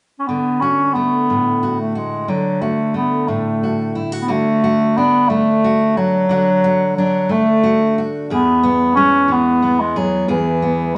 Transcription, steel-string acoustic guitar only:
0.29 2.28 D3 medium
0.62 1.62 F#4 medium
0.95 2.94 A3 soft
1.30 2.30 A2 soft
1.63 1.95 F#4 soft
1.95 2.61 F#4 soft
2.28 4.27 D3 medium
2.62 3.62 F#4 medium
2.94 4.25 A3 medium
3.28 4.29 A2 medium
3.63 3.95 F#4 soft
3.95 4.12 E4 medium
4.12 4.28 F#4 soft
4.28 6.28 D3 medium
4.28 4.63 F#4 medium
4.64 5.63 F#4 medium
4.98 6.26 D4 medium
5.30 6.26 A3 medium
5.64 5.96 F#4 medium
5.97 6.26 F#4 medium
6.29 8.29 D3 medium
6.29 6.63 F#4 medium
6.64 7.62 F#4 medium
6.98 8.27 D4 medium
7.29 8.25 A3 medium
7.63 7.97 F#4 medium
7.98 8.27 F#4 soft
8.30 10.27 E2 medium
8.30 9.95 G#4 medium
8.63 9.62 B3 medium
8.97 10.26 G#3 medium
9.28 10.25 E3 medium
9.62 10.62 B3 soft
9.96 10.25 G#4 medium
10.28 10.98 E2 medium
10.28 10.98 G#4 medium
10.62 10.98 B3 medium

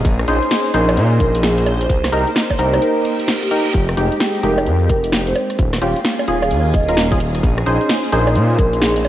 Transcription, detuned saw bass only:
0.05 0.25 A#1 loud
0.28 0.40 A#1 medium
0.74 0.99 A#1 medium
0.97 1.22 A#2 loud
1.20 1.87 A#1 loud
1.89 2.10 C2 loud
2.13 2.25 C2 medium
2.59 2.79 C2 medium
3.74 3.94 F1 loud
3.97 4.09 F1 medium
4.43 4.68 F1 medium
4.67 4.91 F2 loud
4.90 5.33 F1 loud
5.59 5.79 D#1 loud
5.82 5.94 D#1 medium
6.28 6.53 D#1 medium
6.51 6.76 D#2 loud
6.74 7.41 D#1 loud
7.43 7.63 A#1 loud
7.66 7.78 A#1 medium
8.13 8.37 A#1 medium
8.36 8.60 A#2 loud
8.59 9.08 A#1 loud

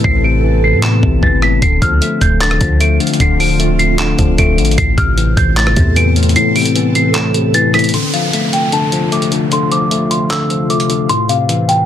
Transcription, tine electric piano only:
0.00 0.04 A2 loud
0.00 0.24 C3 medium
0.00 0.44 E3 medium
0.04 0.82 A2 loud
0.24 1.02 C3 medium
0.44 1.21 E3 medium
0.83 1.41 A2 medium
1.03 1.62 C3 medium
1.23 1.62 E3 medium
1.42 1.62 A2 medium
1.62 2.40 D3 loud
1.82 2.60 F3 medium
2.02 2.79 A3 medium
2.41 2.99 D3 medium
2.61 3.38 F3 medium
2.80 3.58 A3 medium
3.00 3.19 D3 medium
3.20 3.97 D3 medium
3.40 4.18 F3 medium
3.59 4.37 A3 medium
3.99 4.57 D3 loud
4.19 4.78 F3 medium
4.39 4.78 A3 medium
4.58 4.78 D3 medium
4.78 5.56 A2 loud
4.98 5.75 C3 medium
5.17 5.95 E3 medium
5.57 6.15 A2 medium
5.76 6.55 C3 medium
5.96 6.74 E3 medium
6.16 6.35 A2 medium
6.36 7.14 A2 medium
6.56 7.34 C3 medium
6.75 7.53 E3 medium
7.15 7.73 A2 medium
7.35 7.94 C3 medium
7.54 7.94 E3 medium
7.74 7.94 A2 medium
7.94 8.71 D3 medium
8.13 8.91 F3 medium
8.33 9.11 A3 medium
8.72 9.31 D3 medium
8.93 9.70 F3 medium
9.12 9.90 A3 medium
9.32 9.51 D3 medium
9.52 10.29 D3 medium
9.71 10.49 F3 medium
9.91 10.69 A3 medium
10.30 10.88 D3 medium
10.50 11.10 F3 medium
10.70 11.10 A3 medium
10.90 11.09 D3 medium
11.09 11.86 A2 medium
11.29 11.86 C3 medium
11.49 11.86 E3 medium

